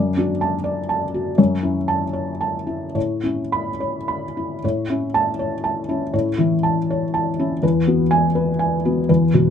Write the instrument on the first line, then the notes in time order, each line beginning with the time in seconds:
felt piano
Already playing: F#2 D5
0.17 D4 F#4
0.41 A5
0.64 D5
0.89 A5
1.14 F#4
1.38 F#2 C#5
1.63 C#4 E4
1.88 A5
2.13 C#5
2.41 A5
2.67 E4
2.95 A2 C#5
3.24 C#4 E4
3.52 B5
3.80 C#5
4.08 B5
4.37 E4
4.64 A2 C#5
4.90 C#4 E4
5.14 A5
5.39 C#5
5.64 A5
5.89 C#4 E4
6.14 A2 C#5
6.38 E3 E4
6.63 A5
6.90 C#5
7.14 A5
7.39 C#4 E4
7.63 E2 B4
7.87 B3 F#4
8.11 G#5
8.35 B4
8.59 G#5
8.85 B3 F#4
9.09 E2 B4
9.34 B2 F#4